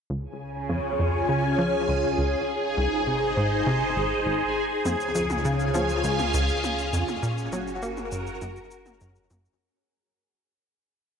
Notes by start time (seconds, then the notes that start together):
0.10 C#2 C#3 G#4 G#5
0.23 G#5
0.32 C#4
0.44 G#4
0.60 F4
0.69 F2
0.99 F2
1.29 C#3
1.58 F3
1.88 C#2
2.18 C#2
2.47 G#1 D#4
2.73 C5
2.77 C2
3.07 C2
3.37 G#2
3.67 C3
3.96 G#1
4.26 G#1
4.85 C#2 F2 C#3, high tom, cabasa
4.96 C#4
5.00 cabasa
5.15 F2, cabasa
5.29 F4, high tom, cabasa
5.45 C#3 G#5, cabasa
5.60 cabasa
5.74 F3, high tom, cabasa
5.89 cabasa
6.04 C#2, cabasa
6.19 high tom, cabasa
6.34 C#2, cabasa
6.49 cabasa
6.64 high tom, cabasa
6.79 cabasa
6.93 F2, cabasa
7.08 high tom, cabasa
7.23 F#1 A#2, cabasa
7.35 F#4, cabasa
7.52 F#3, high tom, cabasa
7.68 cabasa
7.78 A#4
7.82 A#3, cabasa
7.97 high tom, cabasa
8.12 F#2, cabasa
8.27 cabasa
8.42 F#2, high tom, cabasa
8.56 cabasa
8.71 cabasa
8.86 high tom, cabasa
9.01 F#2, cabasa
9.16 cabasa
9.30 F#2, high tom, cabasa
9.45 cabasa